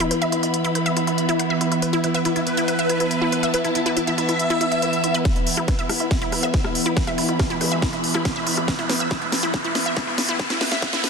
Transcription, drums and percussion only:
0.00 closed hi-hat
0.11 closed hi-hat
0.22 closed hi-hat
0.32 closed hi-hat
0.43 closed hi-hat
0.54 closed hi-hat
0.64 closed hi-hat
0.75 closed hi-hat
0.86 closed hi-hat
0.97 closed hi-hat
1.07 closed hi-hat
1.18 closed hi-hat
1.29 closed hi-hat
1.39 closed hi-hat
1.61 closed hi-hat
1.72 closed hi-hat
1.82 closed hi-hat
1.93 closed hi-hat
2.04 closed hi-hat
2.14 closed hi-hat
2.25 closed hi-hat
2.36 closed hi-hat
2.47 closed hi-hat
2.57 closed hi-hat
2.68 closed hi-hat
2.79 closed hi-hat
2.90 closed hi-hat
3.00 closed hi-hat
3.11 closed hi-hat
3.32 closed hi-hat
3.43 closed hi-hat
3.54 closed hi-hat
3.64 closed hi-hat
3.75 closed hi-hat
3.86 closed hi-hat
3.97 closed hi-hat
4.07 closed hi-hat
4.18 closed hi-hat
4.29 closed hi-hat
4.39 closed hi-hat
4.50 closed hi-hat
4.61 closed hi-hat
4.72 closed hi-hat
4.82 closed hi-hat
4.93 closed hi-hat
5.04 closed hi-hat
5.14 closed hi-hat
5.25 kick, snare, closed hi-hat
5.36 closed hi-hat
5.47 open hi-hat
5.57 cross-stick, closed hi-hat
5.68 kick, snare, closed hi-hat
5.79 closed hi-hat
5.89 cross-stick, open hi-hat
6.00 closed hi-hat
6.11 kick, snare, closed hi-hat
6.22 closed hi-hat
6.32 cross-stick, open hi-hat
6.43 closed hi-hat
6.54 kick, snare, closed hi-hat
6.64 cross-stick
6.75 open hi-hat
6.86 closed hi-hat
6.97 kick, snare, closed hi-hat
7.07 cross-stick, closed hi-hat
7.18 open hi-hat
7.29 closed hi-hat
7.39 kick, cross-stick, snare, closed hi-hat
7.50 closed hi-hat
7.61 open hi-hat
7.72 closed hi-hat
7.82 kick, cross-stick, snare, closed hi-hat
7.93 closed hi-hat
8.04 open hi-hat
8.14 cross-stick
8.25 kick, snare, closed hi-hat
8.47 open hi-hat
8.57 cross-stick, closed hi-hat
8.68 kick, snare, closed hi-hat
8.79 closed hi-hat
8.89 snare, open hi-hat
9.00 closed hi-hat
9.11 kick, snare, closed hi-hat
9.22 closed hi-hat
9.32 snare, open hi-hat
9.43 closed hi-hat
9.54 kick, snare, closed hi-hat
9.64 closed hi-hat
9.75 snare, open hi-hat
9.86 closed hi-hat
9.97 kick, snare, closed hi-hat
10.18 snare, open hi-hat
10.29 closed hi-hat
10.39 kick, snare, closed hi-hat
10.50 snare, closed hi-hat
10.61 snare, open hi-hat
10.72 snare
10.82 kick, snare, closed hi-hat
10.93 snare, closed hi-hat
11.04 snare, open hi-hat

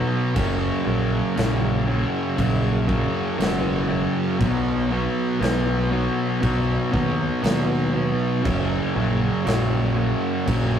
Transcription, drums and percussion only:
0.36 kick, crash
1.37 snare, crash
2.38 kick, crash
2.89 kick
3.40 snare, crash
4.41 kick, crash
5.42 snare, crash
6.43 kick, crash
6.94 kick
7.44 snare, crash
8.45 kick, crash
9.47 snare, crash
10.47 kick, crash

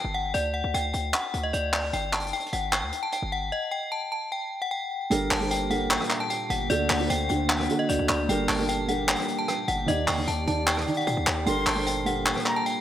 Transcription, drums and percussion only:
0.34 closed hi-hat
0.74 closed hi-hat
0.94 closed hi-hat
1.13 clap, closed hi-hat
1.34 closed hi-hat
1.53 closed hi-hat
1.73 clap, open hi-hat
1.93 closed hi-hat
2.13 clap, closed hi-hat
2.20 closed hi-hat
2.26 closed hi-hat
2.33 closed hi-hat
2.40 closed hi-hat
2.46 closed hi-hat
2.53 closed hi-hat
2.72 clap, closed hi-hat
2.92 closed hi-hat
3.12 closed hi-hat
5.11 closed hi-hat
5.31 clap, open hi-hat
5.51 closed hi-hat
5.70 closed hi-hat
5.91 clap, closed hi-hat
5.97 cross-stick, closed hi-hat
6.04 closed hi-hat
6.10 clap, closed hi-hat
6.30 closed hi-hat
6.50 closed hi-hat
6.70 closed hi-hat
6.90 clap, open hi-hat
7.10 closed hi-hat
7.29 closed hi-hat
7.50 clap, closed hi-hat
7.56 cross-stick, closed hi-hat
7.63 closed hi-hat
7.69 closed hi-hat
7.89 closed hi-hat
8.09 clap, closed hi-hat
8.29 closed hi-hat
8.49 clap, open hi-hat
8.69 closed hi-hat
8.88 closed hi-hat
9.09 clap, closed hi-hat
9.15 cross-stick, closed hi-hat
9.22 closed hi-hat
9.28 closed hi-hat
9.48 cross-stick, closed hi-hat
9.68 closed hi-hat
9.88 closed hi-hat
10.08 clap, open hi-hat
10.28 closed hi-hat
10.47 closed hi-hat
10.67 clap, closed hi-hat
10.74 cross-stick, closed hi-hat
10.81 closed hi-hat
10.87 closed hi-hat
10.94 closed hi-hat
11.00 closed hi-hat
11.07 closed hi-hat
11.27 clap, closed hi-hat
11.47 closed hi-hat
11.67 clap, open hi-hat
11.86 closed hi-hat
12.06 closed hi-hat
12.26 clap, closed hi-hat
12.33 cross-stick, closed hi-hat
12.40 closed hi-hat
12.46 clap, closed hi-hat
12.66 closed hi-hat

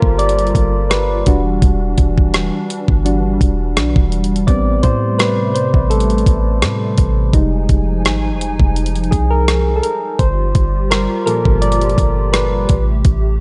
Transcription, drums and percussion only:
0.02 kick
0.19 closed hi-hat
0.29 closed hi-hat
0.39 closed hi-hat
0.47 closed hi-hat
0.55 kick, closed hi-hat
0.91 cross-stick, closed hi-hat
1.26 kick, closed hi-hat
1.62 kick, closed hi-hat
1.98 kick, closed hi-hat
2.18 kick
2.34 cross-stick, closed hi-hat
2.70 closed hi-hat
2.88 kick
3.06 closed hi-hat
3.41 kick, closed hi-hat
3.77 cross-stick, closed hi-hat
3.96 kick
4.12 closed hi-hat
4.24 closed hi-hat
4.36 closed hi-hat
4.48 kick, closed hi-hat
4.83 kick, closed hi-hat
5.19 cross-stick, closed hi-hat
5.56 closed hi-hat
5.74 kick
5.91 closed hi-hat
6.00 closed hi-hat
6.10 closed hi-hat
6.18 closed hi-hat
6.26 kick, closed hi-hat
6.62 cross-stick, closed hi-hat
6.98 kick, closed hi-hat
7.33 kick, closed hi-hat
7.69 kick, closed hi-hat
8.05 cross-stick, closed hi-hat
8.41 closed hi-hat
8.60 kick
8.76 closed hi-hat
8.86 closed hi-hat
8.96 closed hi-hat
9.04 closed hi-hat
9.12 kick, closed hi-hat
9.48 cross-stick, closed hi-hat
9.83 closed hi-hat
10.19 kick, closed hi-hat
10.55 kick, closed hi-hat
10.91 cross-stick, closed hi-hat
11.27 closed hi-hat
11.45 kick
11.62 closed hi-hat
11.72 closed hi-hat
11.81 closed hi-hat
11.90 closed hi-hat
11.98 kick, closed hi-hat
12.34 cross-stick, closed hi-hat
12.69 kick, closed hi-hat
13.05 kick, closed hi-hat

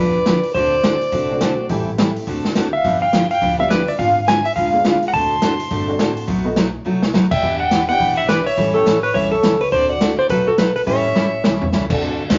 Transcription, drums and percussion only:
0.26 snare, closed hi-hat
0.43 open hi-hat
0.55 kick, open hi-hat
0.84 snare, closed hi-hat
1.01 open hi-hat
1.12 kick, open hi-hat
1.41 snare, closed hi-hat
1.69 kick, open hi-hat
1.98 snare, closed hi-hat
2.16 open hi-hat
2.27 kick, open hi-hat
2.45 snare
2.55 snare, closed hi-hat
2.84 kick, open hi-hat
3.13 snare, closed hi-hat
3.31 open hi-hat
3.42 kick, open hi-hat
3.70 snare, closed hi-hat
3.88 open hi-hat
3.99 kick, open hi-hat
4.28 snare, closed hi-hat
4.45 open hi-hat
4.56 kick, open hi-hat
4.85 snare, closed hi-hat
5.02 open hi-hat
5.13 kick, open hi-hat
5.42 snare, closed hi-hat
5.60 open hi-hat
5.71 kick, open hi-hat
5.99 snare, closed hi-hat
6.17 open hi-hat
6.28 kick, open hi-hat
6.56 snare, closed hi-hat
7.02 snare
7.14 snare
7.31 kick, crash
7.42 kick
7.71 snare, closed hi-hat
7.89 open hi-hat
8.00 kick, open hi-hat
8.29 snare, closed hi-hat
8.47 open hi-hat
8.57 kick, open hi-hat
8.86 snare, closed hi-hat
9.04 open hi-hat
9.15 kick, open hi-hat
9.43 snare, closed hi-hat
9.61 open hi-hat
9.72 kick, open hi-hat
10.01 snare, closed hi-hat
10.29 kick, open hi-hat
10.58 snare, closed hi-hat
10.76 open hi-hat
10.87 kick, open hi-hat
11.15 snare
11.44 snare
11.62 floor tom
11.73 snare
11.90 kick, crash
12.01 kick
12.30 kick, snare, hi-hat pedal, ride

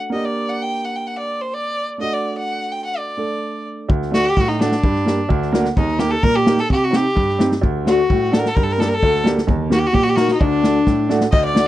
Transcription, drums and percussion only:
3.90 kick
4.02 snare
4.14 snare
4.37 kick, snare
4.50 snare
4.61 snare
4.72 snare
4.83 kick
4.96 snare
5.07 snare
5.30 kick
5.42 snare
5.54 snare
5.65 snare
5.77 kick, snare
5.88 snare
5.99 snare
6.23 kick
6.34 snare
6.47 snare
6.58 snare
6.70 kick
6.93 snare
7.17 kick
7.29 snare
7.40 snare
7.52 snare
7.63 kick
7.87 snare
8.10 kick
8.33 snare
8.46 snare
8.57 kick, snare
8.69 snare
8.81 snare
9.03 kick
9.15 snare
9.26 snare
9.38 snare
9.48 kick
9.71 snare
9.95 kick
10.06 snare
10.17 snare
10.28 snare
10.41 kick
10.64 snare
10.87 kick, snare
11.10 snare
11.21 snare
11.32 kick, crash
11.56 snare

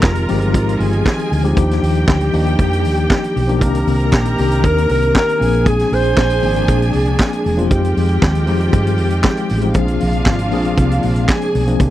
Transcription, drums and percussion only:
0.03 kick, snare, clap
0.15 closed hi-hat
0.28 open hi-hat
0.42 closed hi-hat
0.54 kick, closed hi-hat
0.69 closed hi-hat
0.80 open hi-hat
0.93 closed hi-hat
1.06 kick, snare, clap
1.19 closed hi-hat
1.32 open hi-hat
1.45 closed hi-hat
1.57 kick, closed hi-hat
1.71 snare, closed hi-hat
1.83 open hi-hat
1.95 closed hi-hat
2.08 kick, snare, clap
2.20 closed hi-hat
2.33 open hi-hat
2.47 closed hi-hat
2.59 kick, closed hi-hat
2.73 closed hi-hat
2.85 open hi-hat
2.97 closed hi-hat
3.10 kick, snare, clap
3.24 closed hi-hat
3.37 open hi-hat
3.49 closed hi-hat
3.61 kick, closed hi-hat
3.75 closed hi-hat
3.87 open hi-hat
4.00 closed hi-hat
4.13 kick, snare, clap
4.25 closed hi-hat
4.38 open hi-hat
4.51 closed hi-hat
4.64 kick, closed hi-hat
4.78 closed hi-hat
4.89 open hi-hat
5.02 closed hi-hat
5.15 kick, snare, clap
5.29 closed hi-hat
5.42 open hi-hat
5.54 closed hi-hat
5.66 kick, closed hi-hat
5.79 snare, closed hi-hat
5.93 open hi-hat
6.04 closed hi-hat
6.17 kick, snare, clap
6.30 closed hi-hat
6.42 open hi-hat
6.56 closed hi-hat
6.68 kick, closed hi-hat
6.82 closed hi-hat
6.93 open hi-hat
7.05 closed hi-hat
7.19 kick, snare, clap
7.33 closed hi-hat
7.46 open hi-hat
7.59 closed hi-hat
7.71 kick, closed hi-hat
7.84 closed hi-hat
7.97 open hi-hat
8.09 closed hi-hat
8.22 kick, snare, clap
8.35 closed hi-hat
8.47 open hi-hat
8.61 closed hi-hat
8.73 kick, closed hi-hat
8.87 closed hi-hat
8.98 open hi-hat
9.10 closed hi-hat
9.24 kick, snare, clap
9.37 closed hi-hat
9.49 open hi-hat
9.61 closed hi-hat
9.74 kick, closed hi-hat
9.88 closed hi-hat
10.00 open hi-hat
10.13 closed hi-hat
10.26 kick, snare, clap
10.39 closed hi-hat
10.51 open hi-hat
10.65 closed hi-hat
10.77 kick, closed hi-hat
10.91 closed hi-hat
11.03 open hi-hat
11.15 closed hi-hat
11.29 kick, snare, clap
11.41 closed hi-hat
11.55 open hi-hat
11.67 closed hi-hat
11.80 kick, closed hi-hat

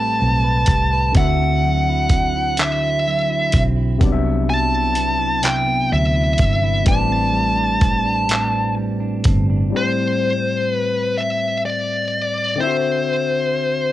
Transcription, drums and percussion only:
0.66 kick, closed hi-hat
1.15 kick, closed hi-hat
2.09 kick, closed hi-hat
2.57 clap, closed hi-hat
3.52 kick, closed hi-hat
4.01 kick, closed hi-hat
4.95 closed hi-hat
5.43 clap, closed hi-hat
6.38 kick, closed hi-hat
6.86 kick, closed hi-hat
7.81 kick, closed hi-hat
8.29 clap, closed hi-hat
9.24 kick, closed hi-hat

